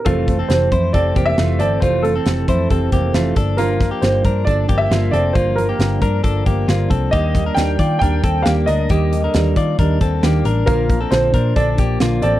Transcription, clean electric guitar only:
\new Staff \with { instrumentName = "Clean electric guitar" } { \time 4/4 \key f \major \tempo 4 = 135 <a f'>8. <c' a'>8. <e' c''>8 <c' a'>8 <bes g'>8 <a f'>8 <c' a'>8 | <a f'>8. <c' a'>8. <e' c''>8 <c' a'>8 <bes g'>8 <a f'>8 <d' a'>8 | <bes f'>8. <bes g'>8. <d' bes'>8 <d' a'>8 <bes g'>8 <bes f'>8 <c' a'>8 | <bes f'>8. <bes g'>8. <d' bes'>8 <d' a'>8 <bes g'>8 <bes f'>8 <c' a'>8 |
<bes g'>8. <d' bes'>8. <f' d''>8 <d' bes'>8 <c' a'>8 <bes g'>8 <d' bes'>8 | <bes g'>8. <d bes'>8. <f' d''>8 <d' bes'>8 <c' a'>8 <bes g'>8 <d' bes'>8 | <bes f'>8. <c' a'>8. <d' bes'>8 <d' a'>8 <bes g'>8 <bes f'>8 <c' a'>8 | }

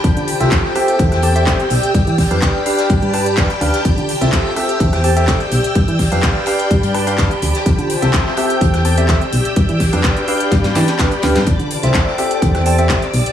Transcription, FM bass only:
\new Staff \with { instrumentName = "FM bass" } { \clef bass \time 4/4 \key g \mixolydian \tempo 4 = 126 f,16 d16 r16 c,16 r4 e,16 e,8. d,16 r16 b,,16 r16 | g,16 e16 r16 f,16 r4 g,16 g,8. f,16 r16 d,16 r16 | f,16 d16 r16 c,16 r4 e,16 e,8. d,16 r16 b,,16 r16 | g,16 e16 r16 f,16 r4 g,16 g,8. f,16 r16 d,16 r16 |
f,16 d16 r16 c,16 r4 e,16 e,8. d,16 r16 b,,16 r16 | g,16 e16 r16 f,16 r4 g,16 g,16 e16 r8. d,16 g,16 | f,16 d16 r16 c,16 r4 e,16 e,8. d,16 r16 b,,16 r16 | }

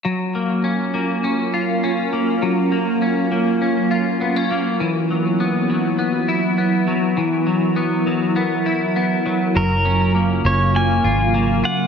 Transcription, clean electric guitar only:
\new Staff \with { instrumentName = "Clean electric guitar" } { \time 4/4 \key fis \major \tempo 4 = 101 fis8 ais8 cis'8 ais8 cis'8 eis'8 cis'8 ais8 | fis8 ais8 cis'8 ais8 cis'8 eis'8 b16 cis'16 ais8 | e8 fis8 b8 fis8 b8 e'8 b8 fis8 | e8 fis8 b8 fis8 b8 e'8 b8 fis8 |
fis8 cis'8 ais8 cis'8 ais8 eis'8 ais8 eis'8 | }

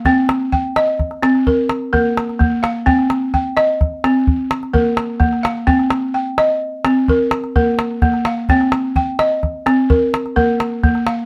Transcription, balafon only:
\new Staff \with { instrumentName = "Balafon" } { \time 12/8 \key c \minor \tempo 4. = 85 << { <f'' g''>4 g''4. r8 bes'4 bes'4. f''8 | g''4 g''4. r4. bes'4. f''8 | g''4 g''4. r8 bes'4 bes'4. f''8 | g''4 g''4. r8 bes'4 bes'4. f''8 | } \\ { c'4 r8 ees''4 c'8 r4 bes4 bes4 | c'4 r8 ees''4 c'8 r4 bes4 bes4 | c'4 r8 ees''4 c'8 r4 bes4 bes4 | c'4 r8 ees''4 c'8 r4 bes4 bes4 | } >> }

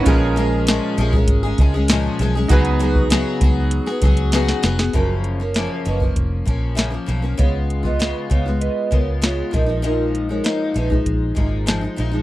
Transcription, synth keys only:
\new Staff \with { instrumentName = "Synth keys" } { \time 4/4 \key fis \major \tempo 4 = 98 << { <dis' b'>16 r2. r8. | r1 | r1 | r1 |
r1 | } \\ { <cis' eis' gis' ais'>1 | <dis' fis' gis' b'>1 | r1 | r1 |
r1 | } >> }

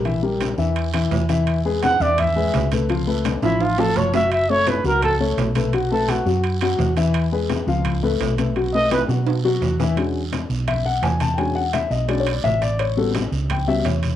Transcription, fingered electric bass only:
\new Staff \with { instrumentName = "Fingered electric bass" } { \clef bass \time 4/4 \key e \mixolydian \tempo 4 = 170 ais,,4. e,4. e,4~ | e,4. e,4. cis,4~ | cis,4. a,,4. fis,,4~ | fis,,4. cis,4. b,,4~ |
b,,4. fis,4. e,4~ | e,4. cis,4. b,,4~ | b,,4. b,4. e,4~ | e,4. b,,4. e,4~ |
e,4. b,,4. a,,4~ | a,,4. cis,4. e,4 | }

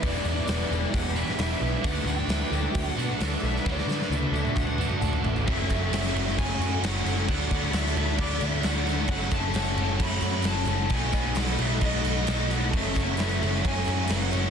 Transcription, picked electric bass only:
\new Staff \with { instrumentName = "Picked electric bass" } { \clef bass \time 4/4 \key d \lydian \tempo 4 = 132 e,,8 e,8 e,,8 e,,8 e,,4 e,,8 b,,8 | d,8 d,8 d,8 d,8 d,8 b,8 d,8 b,,8 | d,8 d8 d,8 d,8 d,4 d,8 a,,8 | \key fis \minor fis,,8 fis,,8 fis,,8 fis,,8 fis,,8 fis,8 fis,,8 fis,,8 |
d,8 d,8 d,8 d,8 d,8 d,8 d,4 | fis,,8 fis,,8 fis,,8 fis,,8 fis,,8 fis,8 fis,,8 fis,,8 | b,,8 b,,8 b,,8 b,,8 b,,8 b,,8 b,,4 | fis,,8 fis,,8 fis,,8 fis,,8 fis,,8 fis,8 fis,,8 fis,,8 | }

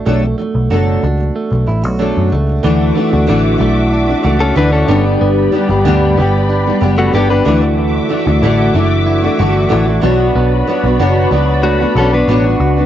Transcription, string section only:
\new Staff \with { instrumentName = "String section" } { \time 4/4 \key d \major \tempo 4 = 93 << { r1 | <e'' d'''>2.~ <e'' d'''>8 <d'' b''>8~ | <d'' b''>2.~ <d'' b''>8 <e'' d'''>8~ | <e'' d'''>2.~ <e'' d'''>8 <d'' b''>8~ |
<d'' b''>1 | } \\ { r1 | fis'2.~ fis'8 g'8~ | g'2.~ g'8 fis'8~ | fis'1~ |
fis'1 | } >> }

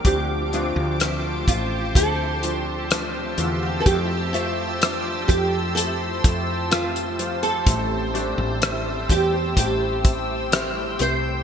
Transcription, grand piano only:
\new Staff \with { instrumentName = "Grand piano" } { \time 4/4 \key d \minor \tempo 4 = 63 << { <f a c' d'>8 <f a c' d'>8 <f a c' e''>8 <f a c' f'>8 <f a c' e'>8 <f a c' d'>8 <f a c' d'>8 <d a c' f'>8 | <f a c' e'>8 <f a c' e''>8 <f a c' d'>8 <f a c' g'>8 <f a c' e'>8 <f a c' e'>8 <f a c' e''>8 <f a c' f'>8 | <g a c' e'>8 <g a c' d'>8 <g a c' e'>8 <g a c' g'>8 <g a c' e'>8 <g a c' e'>8 <g a c' e'>8 <g a c' e'>8 | } \\ { d4. r2 r8 | r1 | a,4. r2 r8 | } >> }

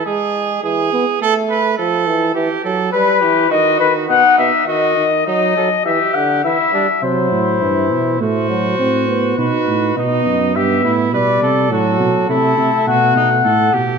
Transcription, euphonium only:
\new Staff \with { instrumentName = "Euphonium" } { \clef bass \time 4/4 \key e \phrygian \tempo 4 = 103 gis4 e8 b8 a4 f8 e8 | e8 fis8 g8 e8 dis8 dis8 b,8 b,8 | dis8 dis8 fis8 fis8 e8 d8 e8 g8 | fis4 e4 a8 fis8 c'8 b8 |
dis'4 b4 b4 g4 | fis4 a2~ a8 r8 | }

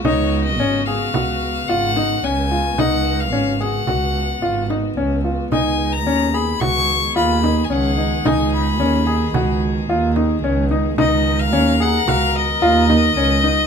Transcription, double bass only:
\new Staff \with { instrumentName = "Double bass" } { \clef bass \time 5/4 \key des \mixolydian \tempo 4 = 110 des,4 aes,,4 des,4 aes,,4 des,4 | des,4 aes,,4 des,4 aes,,4 des,4 | des,4 ees,4 des,4 ees,4 des,4 | des,4 ees,4 des,4 ees,4 des,4 |
des,4 ees,4 des,4 ees,4 des,4 | }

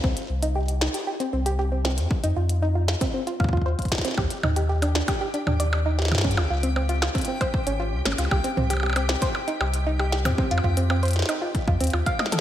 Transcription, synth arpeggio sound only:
\new Staff \with { instrumentName = "Synth arpeggio sound" } { \time 4/4 \key c \minor \tempo 4 = 116 c'16 r8 ees'16 g'16 r16 ees'16 g'16 g'16 c'16 c'16 g'16 g'16 c'16 c'16 r16 | r16 ees'16 f'16 r16 ees'16 f'16 f'16 c'16 c'16 f'16 f''16 f'16 c''16 r8 c'16 | g'16 r16 ees'16 g'16 g'16 d'16 d'16 g'16 g'16 d'16 d'16 d''16 r16 ees'16 g'16 r16 | des'16 f'16 f'16 c'16 c'16 f'16 f'16 c'16 c'16 c''16 r16 des'16 f'16 r16 des'16 f'16 |
g'16 c'16 c'16 g'16 g'16 c'16 c'16 c''16 r16 ees'16 g'16 r16 ees'16 g'16 g'16 c'16 | c'16 f'16 f'16 c'16 c'16 c''16 r16 ees'16 f'16 r16 f'16 c'16 f'16 f''16 ees''16 a'16 | }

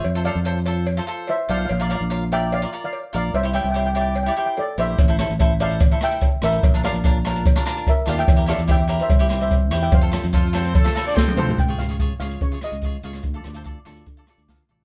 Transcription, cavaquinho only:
\new Staff \with { instrumentName = "Cavaquinho" } { \time 4/4 \key f \major \tempo 4 = 146 r16 <f' a' c''>16 <f' a' c''>16 r16 <f' a' c''>16 r16 <f' a' c''>8 r16 <f' a' c''>16 <f' a' c''>8 r8 <f' a' c''>8 | r16 <f' bes' d''>16 <f' bes' d''>16 r16 <f' bes' f''>16 r16 <f' bes' d''>8 r16 <f' bes' d''>16 <f' bes' d''>8 r8 <f' bes' d''>8 | r16 <e' g' c''>16 <e' g' c''>16 r16 <e' g' c''>16 r16 <e' g' d''>8 r16 <e' g' d''>16 <e' g' c''>8 r8 <e' g' c''>8 | r16 <e' a' c''>16 <e' a' c''>16 r16 <e' a' c''>16 r16 <e' a' c''>8 r16 <e' a' c''>16 <e' a' c''>8 r8 <e' a' c''>8 |
r16 <d' f' bes'>16 <d' f' bes'>16 r16 <d' f' bes'>16 r16 <d' f' bes'>8 r16 <d' f' bes'>16 <d' f' bes'>8 r8 <d' f' g'>8 | r16 <e' g' bes'>16 <e' g' a'>16 r16 <e' g' c''>16 r16 <e' g' bes'>8 r16 <e' g' c''>16 <e' g' c''>8 r8 <e' g' c''>8 | r16 <f' a' c''>16 <f' a' c''>16 r16 <f' a' c''>16 r16 <f' a' c''>8 r16 <f' a' c''>16 <f' a' c''>8 r8 <f' a' c''>8 | r16 <f' aes' des''>16 r16 <f' aes' des''>16 <f' aes' des''>16 r16 <f' aes' des''>8 r16 <f' aes' des''>16 <f' aes' des''>16 r16 <f' aes' des''>16 r16 <f' aes' des''>8 |
r16 <f' a' d''>16 r16 <f' a' c''>16 <f' a' d''>16 r16 <f' a' d''>8 r16 <f' a' d''>16 <f' a' d''>16 r16 <f' a' f''>16 r16 <f' a' d''>8 | }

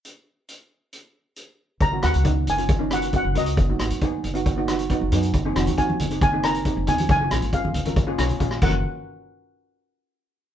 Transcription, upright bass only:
\new Staff \with { instrumentName = "Upright bass" } { \clef bass \time 4/4 \key fis \major \tempo 4 = 136 r1 | fis,,8 dis,16 cis,8. fis,,4.~ fis,,16 fis,,16 cis,8 | fis,,8 gis,,16 fis,8. fis,,4.~ fis,,16 fis,,16 fis,8 | fis,,8 eis,,16 dis,8. fis,,4.~ fis,,16 fis,,16 dis,8 |
fis,,8 ais,,16 gis,,8. fis,,4 b,,8 ais,,8 fis,,8 | r1 | }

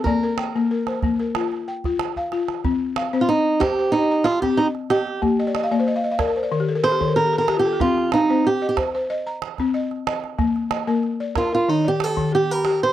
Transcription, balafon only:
\new Staff \with { instrumentName = "Balafon" } { \time 4/4 \key c \dorian \tempo 4 = 93 << { d''16 bes'16 g''8 bes'16 c''8 bes'8. g''8. f''8. | r8 f''16 c''8. r16 c''8 bes''8. ees''8. r16 | r16 ees''32 d''32 ees''32 f''32 d''32 c''32 ees''32 f''32 ees''32 f''32 d''32 bes'32 c''32 d''32 bes'32 g'32 a'32 bes'32 a'32 g'32 a'32 bes'32 a'32 g'32 a'32 bes'16 f'32 a'32 g'32~ | g'32 r16. f''16 c''8 ees''8 c''8 bes''8. ees''8. r16 |
r8 ees''16 bes'8 d''8 bes'8 d''8. g'8. r16 | } \\ { bes8 r16 bes8 r16 bes8 f'8 r16 f'8 r16 f'8 | c'8 r16 c'8 r16 c''8 ees''8 r16 c'8 r16 ees''8 | bes8 r16 bes8 r16 bes'8 ees8 r16 ees8 r16 g'8 | c'8 r16 c'8 r16 c''8 ees''8 r16 c'8 r16 ees''8 |
bes8 r16 bes8 r16 bes'8 ees8 r16 ees8 r16 g'8 | } >> }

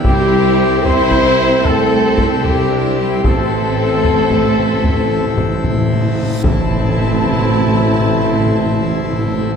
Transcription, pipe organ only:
\new Staff \with { instrumentName = "Pipe organ" } { \time 12/8 \key a \minor \tempo 4. = 75 << { <e' g' e''>1. | <e' e''>1. | <e' e''>1. | } \\ { c'1.~ | c'1. | c'1. | } >> }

